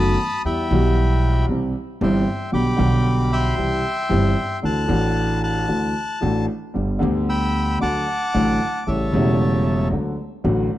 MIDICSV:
0, 0, Header, 1, 4, 480
1, 0, Start_track
1, 0, Tempo, 521739
1, 416, Time_signature, 4, 2, 24, 8
1, 3776, Tempo, 528169
1, 9845, End_track
2, 0, Start_track
2, 0, Title_t, "Bandoneon"
2, 0, Program_c, 0, 23
2, 0, Note_on_c, 0, 81, 76
2, 0, Note_on_c, 0, 83, 74
2, 0, Note_on_c, 0, 87, 113
2, 387, Note_off_c, 0, 81, 0
2, 387, Note_off_c, 0, 83, 0
2, 390, Note_off_c, 0, 87, 0
2, 421, Note_on_c, 0, 79, 58
2, 423, Note_on_c, 0, 76, 58
2, 423, Note_on_c, 0, 83, 82
2, 1337, Note_off_c, 0, 79, 0
2, 1338, Note_off_c, 0, 83, 0
2, 1339, Note_off_c, 0, 76, 0
2, 1869, Note_on_c, 0, 84, 80
2, 1870, Note_on_c, 0, 76, 58
2, 1871, Note_on_c, 0, 79, 54
2, 2305, Note_off_c, 0, 84, 0
2, 2306, Note_off_c, 0, 76, 0
2, 2307, Note_off_c, 0, 79, 0
2, 2332, Note_on_c, 0, 86, 97
2, 2336, Note_on_c, 0, 79, 72
2, 2341, Note_on_c, 0, 83, 66
2, 3047, Note_off_c, 0, 79, 0
2, 3058, Note_on_c, 0, 76, 77
2, 3061, Note_on_c, 0, 79, 80
2, 3062, Note_on_c, 0, 84, 99
2, 3074, Note_off_c, 0, 86, 0
2, 3262, Note_off_c, 0, 83, 0
2, 4222, Note_off_c, 0, 76, 0
2, 4224, Note_off_c, 0, 79, 0
2, 4224, Note_off_c, 0, 84, 0
2, 4273, Note_on_c, 0, 81, 77
2, 4273, Note_on_c, 0, 90, 110
2, 4949, Note_off_c, 0, 90, 0
2, 4973, Note_off_c, 0, 81, 0
2, 4986, Note_on_c, 0, 81, 69
2, 4988, Note_on_c, 0, 90, 102
2, 5671, Note_off_c, 0, 90, 0
2, 5914, Note_off_c, 0, 81, 0
2, 6672, Note_on_c, 0, 88, 104
2, 6677, Note_on_c, 0, 79, 69
2, 6677, Note_on_c, 0, 83, 63
2, 7118, Note_off_c, 0, 88, 0
2, 7121, Note_off_c, 0, 79, 0
2, 7121, Note_off_c, 0, 83, 0
2, 7147, Note_on_c, 0, 86, 97
2, 7156, Note_on_c, 0, 78, 70
2, 7158, Note_on_c, 0, 81, 69
2, 8074, Note_off_c, 0, 78, 0
2, 8075, Note_off_c, 0, 81, 0
2, 8106, Note_on_c, 0, 81, 73
2, 8114, Note_on_c, 0, 76, 60
2, 8116, Note_on_c, 0, 73, 53
2, 8135, Note_off_c, 0, 86, 0
2, 9024, Note_off_c, 0, 81, 0
2, 9027, Note_off_c, 0, 76, 0
2, 9029, Note_off_c, 0, 73, 0
2, 9845, End_track
3, 0, Start_track
3, 0, Title_t, "Grand piano"
3, 0, Program_c, 1, 0
3, 0, Note_on_c, 1, 42, 81
3, 0, Note_on_c, 1, 51, 71
3, 0, Note_on_c, 1, 54, 88
3, 0, Note_on_c, 1, 57, 69
3, 0, Note_on_c, 1, 59, 67
3, 0, Note_on_c, 1, 66, 82
3, 132, Note_off_c, 1, 51, 0
3, 133, Note_off_c, 1, 57, 0
3, 134, Note_off_c, 1, 42, 0
3, 134, Note_off_c, 1, 54, 0
3, 134, Note_off_c, 1, 66, 0
3, 135, Note_off_c, 1, 59, 0
3, 409, Note_on_c, 1, 40, 54
3, 411, Note_on_c, 1, 52, 53
3, 412, Note_on_c, 1, 55, 41
3, 413, Note_on_c, 1, 59, 42
3, 416, Note_on_c, 1, 67, 54
3, 613, Note_off_c, 1, 40, 0
3, 615, Note_off_c, 1, 55, 0
3, 615, Note_off_c, 1, 59, 0
3, 616, Note_off_c, 1, 52, 0
3, 616, Note_off_c, 1, 67, 0
3, 647, Note_on_c, 1, 52, 81
3, 658, Note_on_c, 1, 55, 69
3, 661, Note_on_c, 1, 47, 91
3, 665, Note_on_c, 1, 35, 91
3, 669, Note_on_c, 1, 59, 77
3, 681, Note_on_c, 1, 67, 77
3, 1332, Note_off_c, 1, 52, 0
3, 1337, Note_off_c, 1, 55, 0
3, 1339, Note_off_c, 1, 47, 0
3, 1341, Note_off_c, 1, 35, 0
3, 1343, Note_off_c, 1, 59, 0
3, 1349, Note_off_c, 1, 67, 0
3, 1374, Note_on_c, 1, 36, 59
3, 1374, Note_on_c, 1, 48, 55
3, 1374, Note_on_c, 1, 52, 44
3, 1374, Note_on_c, 1, 55, 45
3, 1379, Note_on_c, 1, 60, 42
3, 1380, Note_on_c, 1, 67, 47
3, 1574, Note_off_c, 1, 36, 0
3, 1574, Note_off_c, 1, 48, 0
3, 1574, Note_off_c, 1, 52, 0
3, 1574, Note_off_c, 1, 55, 0
3, 1577, Note_off_c, 1, 60, 0
3, 1577, Note_off_c, 1, 67, 0
3, 1847, Note_on_c, 1, 52, 82
3, 1851, Note_on_c, 1, 60, 70
3, 1851, Note_on_c, 1, 67, 83
3, 1852, Note_on_c, 1, 31, 91
3, 1852, Note_on_c, 1, 43, 91
3, 1853, Note_on_c, 1, 55, 66
3, 2049, Note_off_c, 1, 52, 0
3, 2052, Note_off_c, 1, 31, 0
3, 2052, Note_off_c, 1, 43, 0
3, 2052, Note_off_c, 1, 60, 0
3, 2052, Note_off_c, 1, 67, 0
3, 2053, Note_off_c, 1, 55, 0
3, 2316, Note_on_c, 1, 50, 47
3, 2318, Note_on_c, 1, 59, 42
3, 2320, Note_on_c, 1, 35, 54
3, 2321, Note_on_c, 1, 47, 56
3, 2321, Note_on_c, 1, 55, 46
3, 2323, Note_on_c, 1, 67, 54
3, 2524, Note_off_c, 1, 50, 0
3, 2525, Note_off_c, 1, 59, 0
3, 2526, Note_off_c, 1, 35, 0
3, 2526, Note_off_c, 1, 47, 0
3, 2526, Note_off_c, 1, 55, 0
3, 2528, Note_off_c, 1, 67, 0
3, 2545, Note_on_c, 1, 50, 81
3, 2559, Note_on_c, 1, 55, 71
3, 2563, Note_on_c, 1, 35, 95
3, 2565, Note_on_c, 1, 47, 89
3, 2567, Note_on_c, 1, 59, 73
3, 2586, Note_on_c, 1, 67, 81
3, 3244, Note_off_c, 1, 50, 0
3, 3252, Note_off_c, 1, 55, 0
3, 3254, Note_off_c, 1, 35, 0
3, 3255, Note_off_c, 1, 47, 0
3, 3256, Note_off_c, 1, 59, 0
3, 3265, Note_off_c, 1, 67, 0
3, 3281, Note_on_c, 1, 36, 54
3, 3282, Note_on_c, 1, 48, 55
3, 3282, Note_on_c, 1, 52, 46
3, 3286, Note_on_c, 1, 55, 47
3, 3289, Note_on_c, 1, 60, 44
3, 3290, Note_on_c, 1, 67, 59
3, 3490, Note_off_c, 1, 36, 0
3, 3490, Note_off_c, 1, 48, 0
3, 3490, Note_off_c, 1, 52, 0
3, 3492, Note_off_c, 1, 55, 0
3, 3494, Note_off_c, 1, 60, 0
3, 3494, Note_off_c, 1, 67, 0
3, 3765, Note_on_c, 1, 52, 72
3, 3768, Note_on_c, 1, 43, 83
3, 3769, Note_on_c, 1, 31, 90
3, 3769, Note_on_c, 1, 60, 65
3, 3770, Note_on_c, 1, 55, 64
3, 3774, Note_on_c, 1, 67, 86
3, 3971, Note_off_c, 1, 52, 0
3, 3973, Note_off_c, 1, 31, 0
3, 3973, Note_off_c, 1, 43, 0
3, 3973, Note_off_c, 1, 60, 0
3, 3974, Note_off_c, 1, 55, 0
3, 3976, Note_off_c, 1, 67, 0
3, 4247, Note_on_c, 1, 38, 52
3, 4248, Note_on_c, 1, 52, 43
3, 4249, Note_on_c, 1, 57, 44
3, 4250, Note_on_c, 1, 50, 52
3, 4251, Note_on_c, 1, 62, 38
3, 4255, Note_on_c, 1, 66, 53
3, 4450, Note_off_c, 1, 52, 0
3, 4453, Note_off_c, 1, 38, 0
3, 4454, Note_off_c, 1, 50, 0
3, 4454, Note_off_c, 1, 57, 0
3, 4455, Note_off_c, 1, 62, 0
3, 4457, Note_off_c, 1, 66, 0
3, 4464, Note_on_c, 1, 52, 77
3, 4476, Note_on_c, 1, 57, 64
3, 4480, Note_on_c, 1, 33, 89
3, 4485, Note_on_c, 1, 45, 88
3, 4490, Note_on_c, 1, 62, 67
3, 4498, Note_on_c, 1, 66, 84
3, 5166, Note_off_c, 1, 52, 0
3, 5172, Note_off_c, 1, 57, 0
3, 5174, Note_off_c, 1, 33, 0
3, 5177, Note_off_c, 1, 45, 0
3, 5179, Note_off_c, 1, 62, 0
3, 5183, Note_off_c, 1, 66, 0
3, 5207, Note_on_c, 1, 52, 46
3, 5208, Note_on_c, 1, 57, 41
3, 5210, Note_on_c, 1, 62, 39
3, 5212, Note_on_c, 1, 50, 49
3, 5213, Note_on_c, 1, 38, 56
3, 5213, Note_on_c, 1, 66, 50
3, 5415, Note_off_c, 1, 52, 0
3, 5416, Note_off_c, 1, 57, 0
3, 5416, Note_off_c, 1, 62, 0
3, 5418, Note_off_c, 1, 38, 0
3, 5418, Note_off_c, 1, 50, 0
3, 5418, Note_off_c, 1, 66, 0
3, 5685, Note_on_c, 1, 52, 65
3, 5692, Note_on_c, 1, 57, 61
3, 5692, Note_on_c, 1, 62, 61
3, 5693, Note_on_c, 1, 33, 81
3, 5694, Note_on_c, 1, 45, 81
3, 5699, Note_on_c, 1, 66, 74
3, 5898, Note_off_c, 1, 52, 0
3, 5901, Note_off_c, 1, 57, 0
3, 5901, Note_off_c, 1, 62, 0
3, 5902, Note_off_c, 1, 33, 0
3, 5902, Note_off_c, 1, 45, 0
3, 5905, Note_off_c, 1, 66, 0
3, 6170, Note_on_c, 1, 31, 47
3, 6172, Note_on_c, 1, 43, 52
3, 6173, Note_on_c, 1, 50, 38
3, 6174, Note_on_c, 1, 67, 47
3, 6176, Note_on_c, 1, 55, 35
3, 6178, Note_on_c, 1, 59, 38
3, 6382, Note_off_c, 1, 31, 0
3, 6383, Note_off_c, 1, 43, 0
3, 6384, Note_off_c, 1, 50, 0
3, 6384, Note_off_c, 1, 67, 0
3, 6385, Note_off_c, 1, 55, 0
3, 6386, Note_off_c, 1, 59, 0
3, 6399, Note_on_c, 1, 50, 87
3, 6410, Note_on_c, 1, 55, 65
3, 6418, Note_on_c, 1, 38, 93
3, 6420, Note_on_c, 1, 59, 68
3, 6437, Note_on_c, 1, 67, 80
3, 7105, Note_off_c, 1, 55, 0
3, 7107, Note_off_c, 1, 50, 0
3, 7109, Note_off_c, 1, 38, 0
3, 7110, Note_off_c, 1, 59, 0
3, 7118, Note_off_c, 1, 67, 0
3, 7139, Note_on_c, 1, 54, 42
3, 7140, Note_on_c, 1, 50, 53
3, 7141, Note_on_c, 1, 38, 54
3, 7144, Note_on_c, 1, 66, 52
3, 7147, Note_on_c, 1, 57, 40
3, 7347, Note_off_c, 1, 54, 0
3, 7348, Note_off_c, 1, 38, 0
3, 7349, Note_off_c, 1, 50, 0
3, 7349, Note_off_c, 1, 66, 0
3, 7350, Note_off_c, 1, 57, 0
3, 7628, Note_on_c, 1, 50, 76
3, 7628, Note_on_c, 1, 54, 70
3, 7629, Note_on_c, 1, 33, 86
3, 7630, Note_on_c, 1, 66, 74
3, 7632, Note_on_c, 1, 45, 90
3, 7633, Note_on_c, 1, 57, 64
3, 7830, Note_off_c, 1, 33, 0
3, 7830, Note_off_c, 1, 50, 0
3, 7830, Note_off_c, 1, 54, 0
3, 7831, Note_off_c, 1, 66, 0
3, 7832, Note_off_c, 1, 45, 0
3, 7832, Note_off_c, 1, 57, 0
3, 8105, Note_on_c, 1, 49, 40
3, 8106, Note_on_c, 1, 33, 50
3, 8106, Note_on_c, 1, 57, 45
3, 8108, Note_on_c, 1, 45, 51
3, 8108, Note_on_c, 1, 64, 49
3, 8109, Note_on_c, 1, 55, 46
3, 8307, Note_off_c, 1, 49, 0
3, 8308, Note_off_c, 1, 33, 0
3, 8308, Note_off_c, 1, 57, 0
3, 8309, Note_off_c, 1, 45, 0
3, 8309, Note_off_c, 1, 64, 0
3, 8310, Note_off_c, 1, 55, 0
3, 8335, Note_on_c, 1, 49, 81
3, 8350, Note_on_c, 1, 40, 97
3, 8350, Note_on_c, 1, 55, 77
3, 8355, Note_on_c, 1, 28, 98
3, 8358, Note_on_c, 1, 57, 67
3, 8369, Note_on_c, 1, 64, 88
3, 9019, Note_off_c, 1, 49, 0
3, 9027, Note_off_c, 1, 40, 0
3, 9027, Note_off_c, 1, 55, 0
3, 9029, Note_off_c, 1, 28, 0
3, 9031, Note_off_c, 1, 57, 0
3, 9036, Note_off_c, 1, 64, 0
3, 9063, Note_on_c, 1, 50, 53
3, 9063, Note_on_c, 1, 54, 47
3, 9067, Note_on_c, 1, 38, 53
3, 9068, Note_on_c, 1, 57, 45
3, 9068, Note_on_c, 1, 66, 53
3, 9262, Note_off_c, 1, 54, 0
3, 9264, Note_off_c, 1, 38, 0
3, 9264, Note_off_c, 1, 57, 0
3, 9265, Note_off_c, 1, 66, 0
3, 9266, Note_off_c, 1, 50, 0
3, 9534, Note_on_c, 1, 54, 71
3, 9535, Note_on_c, 1, 45, 86
3, 9537, Note_on_c, 1, 50, 70
3, 9538, Note_on_c, 1, 33, 88
3, 9538, Note_on_c, 1, 57, 64
3, 9541, Note_on_c, 1, 66, 84
3, 9735, Note_off_c, 1, 45, 0
3, 9735, Note_off_c, 1, 54, 0
3, 9737, Note_off_c, 1, 33, 0
3, 9737, Note_off_c, 1, 50, 0
3, 9737, Note_off_c, 1, 57, 0
3, 9738, Note_off_c, 1, 66, 0
3, 9845, End_track
4, 0, Start_track
4, 0, Title_t, "Upright bass"
4, 0, Program_c, 2, 32
4, 0, Note_on_c, 2, 30, 89
4, 136, Note_off_c, 2, 30, 0
4, 413, Note_on_c, 2, 40, 65
4, 615, Note_off_c, 2, 40, 0
4, 653, Note_on_c, 2, 35, 99
4, 1335, Note_off_c, 2, 35, 0
4, 1371, Note_on_c, 2, 36, 64
4, 1573, Note_off_c, 2, 36, 0
4, 1850, Note_on_c, 2, 31, 95
4, 2051, Note_off_c, 2, 31, 0
4, 2325, Note_on_c, 2, 35, 62
4, 2529, Note_off_c, 2, 35, 0
4, 2567, Note_on_c, 2, 35, 98
4, 3256, Note_off_c, 2, 35, 0
4, 3293, Note_on_c, 2, 36, 61
4, 3496, Note_off_c, 2, 36, 0
4, 3780, Note_on_c, 2, 31, 100
4, 3979, Note_off_c, 2, 31, 0
4, 4258, Note_on_c, 2, 38, 68
4, 4458, Note_off_c, 2, 38, 0
4, 4491, Note_on_c, 2, 33, 96
4, 5180, Note_off_c, 2, 33, 0
4, 5219, Note_on_c, 2, 38, 56
4, 5421, Note_off_c, 2, 38, 0
4, 5705, Note_on_c, 2, 33, 93
4, 5908, Note_off_c, 2, 33, 0
4, 6188, Note_on_c, 2, 31, 65
4, 6391, Note_off_c, 2, 31, 0
4, 6431, Note_on_c, 2, 38, 94
4, 7115, Note_off_c, 2, 38, 0
4, 7157, Note_on_c, 2, 38, 55
4, 7356, Note_off_c, 2, 38, 0
4, 7633, Note_on_c, 2, 33, 94
4, 7832, Note_off_c, 2, 33, 0
4, 8108, Note_on_c, 2, 33, 67
4, 8309, Note_off_c, 2, 33, 0
4, 8348, Note_on_c, 2, 28, 88
4, 9026, Note_off_c, 2, 28, 0
4, 9063, Note_on_c, 2, 38, 59
4, 9262, Note_off_c, 2, 38, 0
4, 9538, Note_on_c, 2, 33, 89
4, 9737, Note_off_c, 2, 33, 0
4, 9845, End_track
0, 0, End_of_file